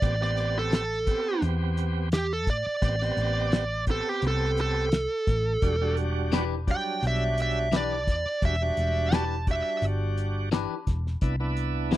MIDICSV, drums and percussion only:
0, 0, Header, 1, 2, 480
1, 0, Start_track
1, 0, Key_signature, 1, "minor"
1, 0, Tempo, 699301
1, 18, Time_signature, 4, 2, 24, 8
1, 8218, End_track
2, 0, Start_track
2, 0, Title_t, "Drums"
2, 15, Note_on_c, 9, 36, 102
2, 15, Note_on_c, 9, 42, 77
2, 83, Note_off_c, 9, 36, 0
2, 84, Note_off_c, 9, 42, 0
2, 152, Note_on_c, 9, 38, 29
2, 221, Note_off_c, 9, 38, 0
2, 255, Note_on_c, 9, 42, 60
2, 324, Note_off_c, 9, 42, 0
2, 494, Note_on_c, 9, 42, 72
2, 501, Note_on_c, 9, 38, 95
2, 563, Note_off_c, 9, 42, 0
2, 570, Note_off_c, 9, 38, 0
2, 734, Note_on_c, 9, 42, 61
2, 735, Note_on_c, 9, 36, 83
2, 803, Note_off_c, 9, 36, 0
2, 803, Note_off_c, 9, 42, 0
2, 976, Note_on_c, 9, 42, 80
2, 1045, Note_off_c, 9, 42, 0
2, 1217, Note_on_c, 9, 42, 56
2, 1286, Note_off_c, 9, 42, 0
2, 1454, Note_on_c, 9, 42, 87
2, 1461, Note_on_c, 9, 38, 104
2, 1523, Note_off_c, 9, 42, 0
2, 1530, Note_off_c, 9, 38, 0
2, 1695, Note_on_c, 9, 42, 60
2, 1696, Note_on_c, 9, 36, 84
2, 1763, Note_off_c, 9, 42, 0
2, 1764, Note_off_c, 9, 36, 0
2, 1936, Note_on_c, 9, 36, 101
2, 1937, Note_on_c, 9, 42, 81
2, 2005, Note_off_c, 9, 36, 0
2, 2006, Note_off_c, 9, 42, 0
2, 2074, Note_on_c, 9, 38, 31
2, 2142, Note_off_c, 9, 38, 0
2, 2177, Note_on_c, 9, 42, 62
2, 2246, Note_off_c, 9, 42, 0
2, 2416, Note_on_c, 9, 42, 81
2, 2423, Note_on_c, 9, 38, 112
2, 2485, Note_off_c, 9, 42, 0
2, 2492, Note_off_c, 9, 38, 0
2, 2655, Note_on_c, 9, 42, 63
2, 2657, Note_on_c, 9, 36, 80
2, 2723, Note_off_c, 9, 42, 0
2, 2726, Note_off_c, 9, 36, 0
2, 2896, Note_on_c, 9, 42, 78
2, 2964, Note_off_c, 9, 42, 0
2, 3138, Note_on_c, 9, 42, 60
2, 3207, Note_off_c, 9, 42, 0
2, 3375, Note_on_c, 9, 42, 75
2, 3382, Note_on_c, 9, 38, 104
2, 3444, Note_off_c, 9, 42, 0
2, 3451, Note_off_c, 9, 38, 0
2, 3617, Note_on_c, 9, 42, 57
2, 3619, Note_on_c, 9, 36, 87
2, 3624, Note_on_c, 9, 38, 33
2, 3686, Note_off_c, 9, 42, 0
2, 3688, Note_off_c, 9, 36, 0
2, 3693, Note_off_c, 9, 38, 0
2, 3857, Note_on_c, 9, 42, 79
2, 3860, Note_on_c, 9, 36, 110
2, 3926, Note_off_c, 9, 42, 0
2, 3928, Note_off_c, 9, 36, 0
2, 4097, Note_on_c, 9, 42, 62
2, 4166, Note_off_c, 9, 42, 0
2, 4338, Note_on_c, 9, 42, 72
2, 4345, Note_on_c, 9, 38, 94
2, 4407, Note_off_c, 9, 42, 0
2, 4414, Note_off_c, 9, 38, 0
2, 4582, Note_on_c, 9, 36, 81
2, 4583, Note_on_c, 9, 42, 58
2, 4650, Note_off_c, 9, 36, 0
2, 4652, Note_off_c, 9, 42, 0
2, 4824, Note_on_c, 9, 42, 71
2, 4893, Note_off_c, 9, 42, 0
2, 5063, Note_on_c, 9, 42, 60
2, 5131, Note_off_c, 9, 42, 0
2, 5301, Note_on_c, 9, 42, 78
2, 5308, Note_on_c, 9, 38, 107
2, 5370, Note_off_c, 9, 42, 0
2, 5377, Note_off_c, 9, 38, 0
2, 5542, Note_on_c, 9, 36, 85
2, 5543, Note_on_c, 9, 42, 63
2, 5550, Note_on_c, 9, 38, 33
2, 5610, Note_off_c, 9, 36, 0
2, 5611, Note_off_c, 9, 42, 0
2, 5618, Note_off_c, 9, 38, 0
2, 5781, Note_on_c, 9, 36, 105
2, 5781, Note_on_c, 9, 42, 79
2, 5849, Note_off_c, 9, 42, 0
2, 5850, Note_off_c, 9, 36, 0
2, 6019, Note_on_c, 9, 42, 70
2, 6088, Note_off_c, 9, 42, 0
2, 6258, Note_on_c, 9, 42, 78
2, 6265, Note_on_c, 9, 38, 112
2, 6327, Note_off_c, 9, 42, 0
2, 6333, Note_off_c, 9, 38, 0
2, 6500, Note_on_c, 9, 42, 64
2, 6501, Note_on_c, 9, 36, 87
2, 6569, Note_off_c, 9, 42, 0
2, 6570, Note_off_c, 9, 36, 0
2, 6740, Note_on_c, 9, 42, 75
2, 6808, Note_off_c, 9, 42, 0
2, 6984, Note_on_c, 9, 42, 66
2, 7052, Note_off_c, 9, 42, 0
2, 7219, Note_on_c, 9, 42, 80
2, 7226, Note_on_c, 9, 38, 93
2, 7288, Note_off_c, 9, 42, 0
2, 7295, Note_off_c, 9, 38, 0
2, 7460, Note_on_c, 9, 42, 58
2, 7461, Note_on_c, 9, 36, 79
2, 7467, Note_on_c, 9, 38, 31
2, 7529, Note_off_c, 9, 42, 0
2, 7530, Note_off_c, 9, 36, 0
2, 7536, Note_off_c, 9, 38, 0
2, 7597, Note_on_c, 9, 38, 33
2, 7666, Note_off_c, 9, 38, 0
2, 7697, Note_on_c, 9, 42, 78
2, 7700, Note_on_c, 9, 36, 99
2, 7765, Note_off_c, 9, 42, 0
2, 7769, Note_off_c, 9, 36, 0
2, 7939, Note_on_c, 9, 42, 59
2, 8008, Note_off_c, 9, 42, 0
2, 8178, Note_on_c, 9, 42, 67
2, 8185, Note_on_c, 9, 38, 99
2, 8218, Note_off_c, 9, 38, 0
2, 8218, Note_off_c, 9, 42, 0
2, 8218, End_track
0, 0, End_of_file